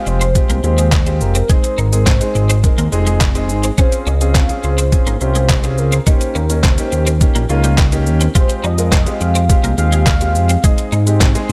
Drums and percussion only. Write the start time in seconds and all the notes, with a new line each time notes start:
0.07 shaker
0.21 closed hi-hat, shaker
0.35 kick, closed hi-hat, shaker
0.50 closed hi-hat, shaker
0.64 shaker
0.78 closed hi-hat, shaker
0.92 kick, snare, clap, closed hi-hat, shaker
1.07 closed hi-hat, shaker
1.21 shaker
1.35 closed hi-hat, shaker
1.50 kick, closed hi-hat, shaker
1.64 closed hi-hat, shaker
1.78 shaker
1.93 closed hi-hat, shaker
2.06 kick, snare, clap, closed hi-hat, shaker
2.21 closed hi-hat, shaker
2.35 shaker
2.50 closed hi-hat, shaker
2.64 kick, closed hi-hat, shaker
2.78 closed hi-hat, shaker
2.92 shaker
3.07 closed hi-hat, shaker
3.21 kick, snare, clap, closed hi-hat, shaker
3.35 closed hi-hat, shaker
3.49 shaker
3.64 closed hi-hat, shaker
3.78 kick, closed hi-hat, shaker
3.92 closed hi-hat, shaker
4.07 shaker
4.21 closed hi-hat, shaker
4.35 kick, snare, clap, closed hi-hat, shaker
4.49 closed hi-hat, shaker
4.64 shaker
4.78 closed hi-hat, shaker
4.92 kick, closed hi-hat, shaker
5.07 closed hi-hat, shaker
5.21 shaker
5.35 closed hi-hat, shaker
5.49 kick, snare, clap, closed hi-hat, shaker
5.64 closed hi-hat, shaker
5.78 shaker
5.92 closed hi-hat, shaker
6.07 kick, closed hi-hat, shaker
6.21 closed hi-hat, shaker
6.35 shaker
6.50 closed hi-hat, shaker
6.63 kick, snare, clap, closed hi-hat, shaker
6.78 closed hi-hat, shaker
6.92 shaker
7.07 closed hi-hat, shaker
7.21 kick, closed hi-hat, shaker
7.36 closed hi-hat, shaker
7.50 shaker
7.64 closed hi-hat, shaker
7.78 kick, snare, clap, closed hi-hat, shaker
7.92 closed hi-hat, shaker
8.07 shaker
8.21 closed hi-hat, shaker
8.35 kick, closed hi-hat, shaker
8.50 closed hi-hat, shaker
8.64 shaker
8.78 closed hi-hat, shaker
8.92 kick, snare, clap, closed hi-hat, shaker
9.07 closed hi-hat, shaker
9.21 shaker
9.35 closed hi-hat, shaker
9.50 kick, closed hi-hat, shaker
9.64 closed hi-hat, shaker
9.78 shaker
9.92 closed hi-hat, shaker
10.06 kick, snare, clap, closed hi-hat, shaker
10.21 closed hi-hat, shaker
10.35 shaker
10.49 closed hi-hat, shaker
10.64 kick, closed hi-hat, shaker
10.78 closed hi-hat, shaker
10.92 shaker
11.07 closed hi-hat, shaker
11.21 kick, snare, clap, closed hi-hat, shaker
11.35 closed hi-hat, shaker